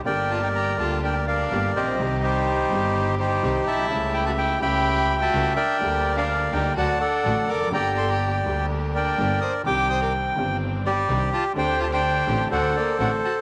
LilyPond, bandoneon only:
\new Staff \with { instrumentName = "Bandoneon" } { \time 4/4 \key g \minor \tempo 4 = 125 << { g''8 a''16 g''16 bes''8 a''8 g''8 f''4 ees''8~ | ees''8 c''2 c''4 a''8~ | a''8 g''16 a''16 g''8 b''4~ b''16 a''8. g''8~ | g''8. f''8. g''8 a''8 fis''4 d'''8 |
bes''8 c'''16 bes''8 r4 r16 g''4 ees'''8 | d'''8 ees'''16 d'''8 r4 r16 d''4 a''8 | g''8 a''16 g''4~ g''16 fis''8 d''8 fis''8 a''8 | } \\ { <bes' d''>2 <bes' d''>8 <bes' d''>4 <g' c''>8~ | <g' c''>8 <ees' g'>2 <ees' g'>4 e''8~ | e''4. <e'' g''>4~ <e'' g''>16 e''8. <bes' d''>8~ | <bes' d''>8. <bes' d''>4~ <bes' d''>16 <d'' fis''>8 <a' d''>4. |
<d'' g''>2 r8 <bes' d''>4. | g''2 r8 g'4. | c''8. c''4~ c''16 <a' c''>2 | } >> }